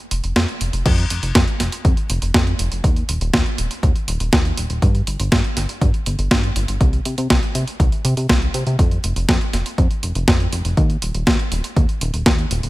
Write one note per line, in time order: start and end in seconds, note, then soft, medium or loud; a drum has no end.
0.11 0.21 F1 medium
0.11 closed hi-hat medium
0.24 0.33 F1 medium
0.24 closed hi-hat soft
0.36 0.46 F2 loud
0.36 snare loud
0.36 closed hi-hat soft
0.48 closed hi-hat soft
0.61 0.71 F1 medium
0.61 closed hi-hat medium
0.73 0.83 F1 medium
0.73 closed hi-hat medium
0.86 1.05 F2 loud
0.86 kick loud
0.86 closed hi-hat medium
0.86 crash loud
0.98 closed hi-hat soft
1.10 1.20 F1 medium
1.10 closed hi-hat medium
1.23 1.33 F1 medium
1.23 closed hi-hat medium
1.35 1.45 F2 medium
1.35 kick loud
1.35 snare loud
1.35 closed hi-hat medium
1.48 closed hi-hat soft
1.60 1.70 F1 medium
1.60 snare soft
1.60 closed hi-hat loud
1.72 closed hi-hat medium
1.85 1.95 F2 medium
1.85 kick loud
1.85 closed hi-hat medium
1.97 closed hi-hat soft
2.10 2.19 F1 loud
2.10 closed hi-hat loud
2.22 2.32 F1 medium
2.22 closed hi-hat medium
2.34 2.54 F2 medium
2.34 kick loud
2.34 snare loud
2.34 closed hi-hat medium
2.47 closed hi-hat soft
2.59 2.69 F1 loud
2.59 closed hi-hat medium
2.72 2.81 F1 medium
2.72 closed hi-hat medium
2.84 3.04 D#2 loud
2.84 kick loud
2.84 closed hi-hat medium
2.96 closed hi-hat soft
3.09 3.19 D#1 medium
3.09 closed hi-hat loud
3.21 3.31 D#1 medium
3.21 closed hi-hat medium
3.33 3.43 D#2 medium
3.33 kick loud
3.33 snare loud
3.33 closed hi-hat medium
3.46 closed hi-hat soft
3.58 3.68 D#1 medium
3.58 closed hi-hat loud
3.71 closed hi-hat medium
3.83 3.93 D#2 medium
3.83 kick loud
3.83 closed hi-hat medium
3.96 closed hi-hat soft
4.08 4.18 D#1 loud
4.08 closed hi-hat loud
4.20 4.30 D#1 medium
4.20 closed hi-hat medium
4.33 4.52 D#2 medium
4.33 kick loud
4.33 snare loud
4.33 closed hi-hat medium
4.45 closed hi-hat soft
4.57 4.67 D#1 loud
4.57 closed hi-hat loud
4.70 4.80 D#1 medium
4.70 closed hi-hat medium
4.82 5.02 G2 loud
4.82 kick loud
4.82 closed hi-hat medium
4.95 closed hi-hat soft
5.07 5.17 G1 medium
5.07 closed hi-hat medium
5.20 5.29 G1 medium
5.20 closed hi-hat medium
5.32 5.42 G2 medium
5.32 kick loud
5.32 snare loud
5.32 closed hi-hat medium
5.44 closed hi-hat soft
5.57 5.66 G1 medium
5.57 snare soft
5.57 closed hi-hat loud
5.69 closed hi-hat medium
5.81 5.91 G2 medium
5.81 kick loud
5.81 closed hi-hat medium
5.94 closed hi-hat soft
6.06 6.16 G1 loud
6.06 closed hi-hat loud
6.19 6.28 G1 medium
6.19 closed hi-hat medium
6.31 6.51 G2 medium
6.31 kick loud
6.31 snare loud
6.31 closed hi-hat medium
6.44 closed hi-hat soft
6.56 6.66 G1 loud
6.56 closed hi-hat loud
6.68 6.78 G1 medium
6.68 closed hi-hat medium
6.81 7.00 C2 loud
6.81 kick loud
6.81 closed hi-hat medium
6.93 closed hi-hat soft
7.05 7.15 C3 medium
7.05 closed hi-hat medium
7.18 7.28 C3 medium
7.18 closed hi-hat medium
7.30 7.40 C2 medium
7.30 kick loud
7.30 snare loud
7.30 closed hi-hat medium
7.43 closed hi-hat soft
7.55 7.65 C3 medium
7.55 closed hi-hat medium
7.67 closed hi-hat medium
7.80 7.90 C2 medium
7.80 kick loud
7.80 closed hi-hat soft
7.92 closed hi-hat soft
8.05 8.14 C3 loud
8.05 closed hi-hat loud
8.17 8.27 C3 medium
8.17 closed hi-hat medium
8.29 8.49 C2 medium
8.29 kick loud
8.29 snare loud
8.29 closed hi-hat medium
8.42 closed hi-hat soft
8.54 8.64 C3 loud
8.54 closed hi-hat medium
8.67 8.76 C3 medium
8.67 closed hi-hat medium
8.79 8.99 F2 loud
8.79 kick loud
8.79 closed hi-hat medium
8.91 closed hi-hat soft
9.04 9.14 F1 medium
9.04 closed hi-hat medium
9.16 9.26 F1 medium
9.16 closed hi-hat medium
9.29 9.38 F2 medium
9.29 kick loud
9.29 snare loud
9.29 closed hi-hat medium
9.41 closed hi-hat soft
9.53 9.63 F1 medium
9.53 snare soft
9.53 closed hi-hat medium
9.66 closed hi-hat soft
9.78 9.88 F2 medium
9.78 kick loud
9.78 closed hi-hat soft
9.91 closed hi-hat soft
10.03 10.13 F1 loud
10.03 closed hi-hat medium
10.15 10.25 F1 medium
10.15 closed hi-hat medium
10.28 10.47 F2 medium
10.28 kick loud
10.28 snare loud
10.28 closed hi-hat medium
10.40 closed hi-hat soft
10.52 10.62 F1 loud
10.52 closed hi-hat medium
10.65 10.75 F1 medium
10.65 closed hi-hat medium
10.77 10.97 D#2 loud
10.77 kick loud
10.77 closed hi-hat soft
10.90 closed hi-hat soft
11.02 11.12 D#1 medium
11.02 closed hi-hat medium
11.14 11.24 D#1 medium
11.14 closed hi-hat medium
11.27 11.37 D#2 medium
11.27 kick loud
11.27 snare loud
11.27 closed hi-hat soft
11.39 closed hi-hat soft
11.52 11.62 D#1 medium
11.52 closed hi-hat medium
11.64 closed hi-hat medium
11.76 11.86 D#2 medium
11.76 kick loud
11.76 closed hi-hat soft
11.89 closed hi-hat soft
12.01 12.11 D#1 loud
12.01 closed hi-hat medium
12.14 12.23 D#1 medium
12.14 closed hi-hat medium
12.26 12.46 D#2 medium
12.26 kick loud
12.26 snare loud
12.26 closed hi-hat soft
12.38 closed hi-hat soft
12.51 12.61 D#1 loud
12.51 closed hi-hat medium
12.63 12.70 D#1 medium
12.63 closed hi-hat medium